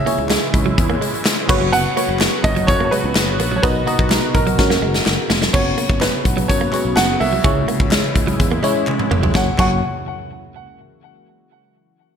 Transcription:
Already playing: C#3 E3 G#3 E4 G#4 C#5 E5
0.06 A#3 E4 G#4 C#5, closed hi-hat
0.18 C#2, muted clean electric guitar stroke
0.29 G#3, snare, clap, closed hi-hat, tambourine
0.54 C#2, muted clean electric guitar stroke, kick, closed hi-hat
0.66 F#3
0.78 E2, muted clean electric guitar stroke, kick, closed hi-hat
0.90 A#3
1.01 G#3, closed hi-hat
1.14 closed hi-hat
1.25 muted clean electric guitar stroke, snare, clap, closed hi-hat, tambourine
1.49 F#1 F#3 A#3 B3 F#4 B4 C#5, kick, crash
1.61 F#3
1.72 B3 F#5, closed hi-hat
1.96 A#3 F#4 B4 C#5, closed hi-hat
2.09 F#1, muted clean electric guitar stroke
2.19 G#3, snare, clap, closed hi-hat, tambourine
2.44 F#1 D#5, muted clean electric guitar stroke, kick, closed hi-hat
2.56 F#3, closed hi-hat
2.67 F#2 C#5, muted clean electric guitar stroke, kick, closed hi-hat
2.80 A#3
2.85 C#5
2.91 G#3 B4, closed hi-hat
3.04 C#2
3.15 F#1, muted clean electric guitar stroke, snare, clap, closed hi-hat, tambourine
3.39 A#1 A#3, closed hi-hat
3.52 F#3
3.56 C#5
3.63 B1 B2 D#3 B3 D#4 F#4 A#4 B4 D#5, kick, closed hi-hat
3.86 A#3 B3 D#4 F#4 D#5 A#5, closed hi-hat
3.99 B1, muted clean electric guitar stroke, kick
4.10 G#3, snare, clap, closed hi-hat, tambourine
4.34 B1 A#4, muted clean electric guitar stroke, kick, closed hi-hat
4.47 F#3, closed hi-hat
4.58 F#2 C#3 F#3 C#4 F#4 A#4, muted clean electric guitar stroke, kick, snare
4.70 A#3, snare
4.82 F#1 G#3
4.94 snare
5.06 F#1, muted clean electric guitar stroke, snare, clap
5.30 F1 A#3, snare
5.42 F#3, snare
5.53 F#1 C#3 F#3 B3 C#4 F#4 C#5, kick, crash
5.78 A#3, closed hi-hat
5.90 F#1, muted clean electric guitar stroke, kick
6.01 G#3 B4, snare, clap, closed hi-hat
6.25 B1, muted clean electric guitar stroke, kick, closed hi-hat
6.37 F#3, closed hi-hat
6.48 F#2 C#5, muted clean electric guitar stroke, kick, closed hi-hat
6.61 A#3
6.72 G#3 B3 C#4 F#4 C#5, clap, closed hi-hat
6.85 B1
6.96 F#1 F#5, muted clean electric guitar stroke, snare, clap, closed hi-hat
7.20 C2 A#3 E5, open hi-hat
7.33 F#3
7.44 C#2 C#3 E3 G#3 C#4 E4 C#5, kick, closed hi-hat
7.68 A#3, closed hi-hat
7.80 C#2, muted clean electric guitar stroke, kick
7.91 G#3, snare, clap, closed hi-hat, tambourine
8.16 C#2, muted clean electric guitar stroke, kick, closed hi-hat
8.27 F#3, closed hi-hat
8.40 E2, muted clean electric guitar stroke, kick, closed hi-hat
8.52 A#3
8.63 G#3 C#4 E4 C#5, clap, closed hi-hat
8.87 muted clean electric guitar stroke, clap, high tom
8.99 mid tom
9.11 F1 A#3, mid tom
9.23 F#3, floor tom
9.35 F#1 F#2 C#3 F#3 A#3 C#4 F#4 C#5 F#5, kick, snare, clap
9.58 F#1 F#2 F#3 A#3 C#4 F#4 C#5 F#5, kick, clap, crash

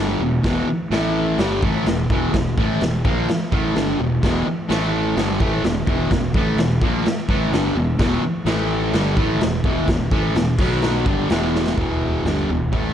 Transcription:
Already playing: G1 G2
0.00 D3 G3
0.20 E1 E2 B2
0.43 E1 E2 B2 E3, kick, snare, crash
0.67 muted fingered electric bass stroke, muted distorted electric guitar stroke
0.90 A1 A2 E3 A3, snare, crash
1.38 G1 G2 D3 G3, snare, crash
1.63 A1 A2 E3 A3, kick
1.86 E1 E2 B2, snare, crash
2.09 E1 E2 B2 E3, kick
2.34 E1 E2 B2, kick, snare, crash
2.57 A1 A2 E3 A3, kick
2.81 E1 E2 B2, snare, crash
3.05 A#1 A#2 F3 A#3, kick
3.29 snare, crash
3.52 A1 A2 E3 A3, kick
3.75 G1 G2 D3 G3, snare, crash
3.99 E1 E2 B2
4.23 E1 E2 B2 E3, kick, snare, crash
4.46 muted distorted electric guitar stroke, muted fingered electric bass stroke
4.68 A1 A2 E3 A3, snare, crash
5.17 G1 G2 D3 G3, snare, crash
5.40 A1 A2 E3 A3, kick
5.63 E1 E2 B2, snare, crash
5.86 E1 E2 B2 E3, kick
6.11 E1 E2 B2, kick, snare, crash
6.34 A1 A2 E3 A3, kick
6.56 E1 E2 B2, snare, crash
6.81 A#1 A#2 F3 A#3, kick
7.06 snare, crash
7.28 A1 A2 E3 A3, kick
7.51 G1 G2 D3 G3, snare, crash
7.75 E1 E2 B2
7.99 E1 E2 B2 E3, kick, snare, crash
8.22 muted fingered electric bass stroke, muted distorted electric guitar stroke
8.45 A1 A2 E3 A3, snare, crash
8.93 G1 G2 D3 G3, snare, crash
9.17 A1 A2 E3 A3, kick
9.39 E1 E2 B2, snare, crash
9.64 E1 E2 B2 E3, kick
9.88 E1 E2 B2, kick, snare, crash
10.11 A1 A2 E3 A3, kick
10.34 E1 E2 B2, snare, crash
10.58 B1 B2 F#3 B3, kick, crash
10.82 snare, crash
11.06 G1 G2 D3 G3, kick
11.30 E1 E2 B2 E3, snare, crash
11.56 snare
11.67 snare
11.78 E1 E2 B2 E3, kick, floor tom
12.01 floor tom
12.25 G1 G2 D3 G3, snare, floor tom
12.48 E1 E2 B2, floor tom
12.72 A1 A2 E3 A3, kick, floor tom

